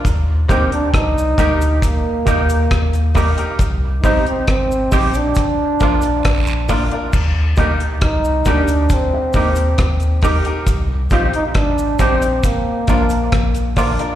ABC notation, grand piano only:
X:1
M:4/4
L:1/16
Q:1/4=68
K:Eb
V:1 name="Grand piano"
z2 [EGB] z3 [EGB] z3 [EGB] z3 [EGB] [EGB] | z2 [EGc] z3 [EGc] z3 [DFB] z3 [DFB] [DFB] | z2 [EGB] z3 [EGB] z3 [EGB] z3 [EGB] [EGB] | z2 [EGc] z3 [EGc] z3 [DFB] z3 [DFB] [DFB] |]